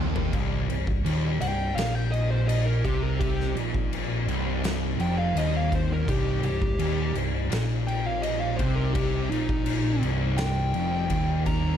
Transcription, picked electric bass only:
0.00 0.30 D#1 loud
0.33 0.66 C1 loud
0.69 1.02 C1 medium
1.04 1.38 D#1 medium
1.40 1.74 C1 medium
1.76 2.80 A#1 medium
2.85 3.52 C2 loud
3.56 4.24 A#1 loud
4.27 4.95 C1 loud
4.98 5.32 F1 medium
5.34 6.03 D#1 loud
6.08 6.41 C1 medium
6.42 6.76 C1 medium
6.79 7.12 D#1 loud
7.14 7.48 C1 medium
7.50 8.54 A#1 medium
8.59 9.27 C2 loud
9.31 9.99 A#1 loud
10.02 10.70 C1 loud
10.74 11.08 F1 medium
11.10 11.77 D#1 loud

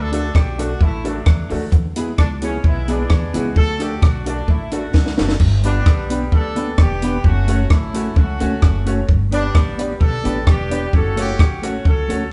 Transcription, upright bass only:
0.00 0.28 D2 loud
0.35 0.74 B1 medium
0.81 1.20 A1 medium
1.27 1.47 E2 medium
1.51 1.70 D2 medium
1.73 2.12 E2 loud
2.19 2.58 C#2 medium
2.64 3.03 B1 medium
3.10 3.31 E2 loud
3.35 3.53 C#2 loud
3.57 3.96 D2 loud
4.03 4.42 B1 medium
4.49 4.88 A1 medium
4.95 5.15 C#2 loud
5.19 5.38 F#1 medium
5.40 5.80 G1 loud
5.87 6.26 B1 medium
6.33 6.72 D2 medium
6.78 7.18 E1 medium
7.25 7.64 F#1 loud
7.70 8.10 A1 medium
8.17 8.37 C#2 medium
8.41 8.60 D2 medium
8.63 9.02 F#1 loud
9.09 9.48 G1 loud
9.55 9.94 A1 medium
10.01 10.22 B1 medium
10.25 10.44 A1 medium
10.47 10.86 E1 loud
10.94 11.33 F#1 loud
11.40 11.79 A1 medium
11.86 12.06 C#2 medium
12.10 12.28 D2 medium

